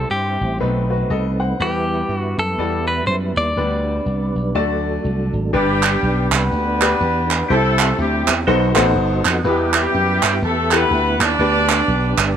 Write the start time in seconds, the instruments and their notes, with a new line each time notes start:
Already playing: upright piano C3 G3 C4 E4 C5, tonewheel organ G3 C4 E4 C5, clean electric guitar A4
0.11 slap bass G2, clean electric guitar G4
0.41 slap bass A1
0.60 slap bass B1, upright piano B2 A3 C4 D#4 B4, tonewheel organ A3 C4 D#4 B4
0.90 upright piano F#4 B4
1.10 slap bass C2, upright piano A4 D#5
1.40 upright piano C5 F#5
1.60 slap bass E2, upright piano E3 G3 B3 E4 A4, tonewheel organ G3 B3 E4 B4, clean electric guitar G4
1.67 upright piano B4
2.09 slap bass G2
2.18 clean electric guitar F#4
2.38 slap bass F#2, clean electric guitar A4
2.58 slap bass E2, upright piano G3 B3 E4 D5
2.88 clean electric guitar B4
3.07 slap bass F#2, clean electric guitar C5
3.37 slap bass D#2, clean electric guitar D5
3.57 slap bass D2, upright piano D3 G3 B3 D4 B4, tonewheel organ G3 B3 D4 B4
4.06 slap bass C2
4.35 slap bass B1
4.55 slap bass D2, upright piano D3 A3 D4 F#4 D5, tonewheel organ F#3 A3 D4 A4
5.04 slap bass C2
5.33 slap bass G#1
5.53 slap bass G1, upright piano G2 D4 G4 B4, horn section G3 B3 D4 G4, tonewheel organ B3 D4 G4
5.83 clap
6.03 slap bass B1
6.31 slap bass C2, horn section B3 D4 G4 B4, clap
6.52 slap bass D2
6.81 upright piano D4 G4 B4, clap
7.01 slap bass E2
7.31 clap
7.48 slap bass C2, upright piano C3 E4 G4 C5, horn section A3 C4 E4 A4, tonewheel organ C4 E4 G4
7.79 clap
7.98 slap bass D2, horn section G3 C4 E4 G4
8.28 slap bass E2, clap
8.47 slap bass B1, upright piano B2 B3 D#4 F#4 A4 C5, tonewheel organ B3 D#4 F#4 A4 C5
8.75 slap bass A1, upright piano B3 D#4 F#4 A4 C5, clap
8.95 slap bass G1, tonewheel organ C5 D#5
9.25 slap bass F2, tonewheel organ D#5 F#5, clap
9.44 slap bass E2, upright piano E3 E4 F#4 B4, horn section G3 B3 E4 G4, tonewheel organ B3 E4 G4
9.51 upright piano G4
9.74 clap
9.95 slap bass F#2
10.23 slap bass G2, clap
10.42 slap bass E2, horn section A3 E4 A4
10.71 horn section B3 E4 G4 B4, upright piano E4 G4 A4, clap
10.91 slap bass D2
11.20 slap bass D#2, horn section D4 G4 B4 D5, clap
11.39 slap bass D2, upright piano D3 D4 G4 B4, tonewheel organ B3 D4 G4
11.70 clap
11.88 slap bass B1
12.17 slap bass G1, clap